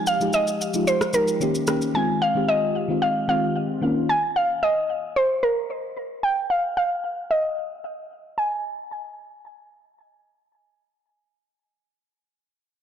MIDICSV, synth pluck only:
0, 0, Header, 1, 2, 480
1, 0, Start_track
1, 0, Tempo, 535714
1, 1742, Time_signature, 4, 2, 24, 8
1, 11489, End_track
2, 0, Start_track
2, 0, Title_t, "Synth pluck"
2, 0, Program_c, 0, 84
2, 64, Note_on_c, 0, 77, 96
2, 286, Note_off_c, 0, 77, 0
2, 304, Note_on_c, 0, 75, 102
2, 783, Note_on_c, 0, 72, 91
2, 797, Note_off_c, 0, 75, 0
2, 1023, Note_on_c, 0, 70, 79
2, 1030, Note_off_c, 0, 72, 0
2, 1469, Note_off_c, 0, 70, 0
2, 1747, Note_on_c, 0, 80, 102
2, 1968, Note_off_c, 0, 80, 0
2, 1987, Note_on_c, 0, 77, 97
2, 2226, Note_on_c, 0, 75, 93
2, 2231, Note_off_c, 0, 77, 0
2, 2705, Note_on_c, 0, 77, 93
2, 2718, Note_off_c, 0, 75, 0
2, 2936, Note_off_c, 0, 77, 0
2, 2947, Note_on_c, 0, 77, 83
2, 3391, Note_off_c, 0, 77, 0
2, 3668, Note_on_c, 0, 80, 110
2, 3775, Note_off_c, 0, 80, 0
2, 3907, Note_on_c, 0, 77, 101
2, 4146, Note_on_c, 0, 75, 101
2, 4152, Note_off_c, 0, 77, 0
2, 4626, Note_on_c, 0, 72, 89
2, 4638, Note_off_c, 0, 75, 0
2, 4865, Note_on_c, 0, 70, 75
2, 4871, Note_off_c, 0, 72, 0
2, 5310, Note_off_c, 0, 70, 0
2, 5585, Note_on_c, 0, 79, 105
2, 5824, Note_on_c, 0, 77, 99
2, 5830, Note_off_c, 0, 79, 0
2, 6056, Note_off_c, 0, 77, 0
2, 6066, Note_on_c, 0, 77, 100
2, 6546, Note_on_c, 0, 75, 82
2, 6558, Note_off_c, 0, 77, 0
2, 7228, Note_off_c, 0, 75, 0
2, 7506, Note_on_c, 0, 80, 84
2, 10924, Note_off_c, 0, 80, 0
2, 11489, End_track
0, 0, End_of_file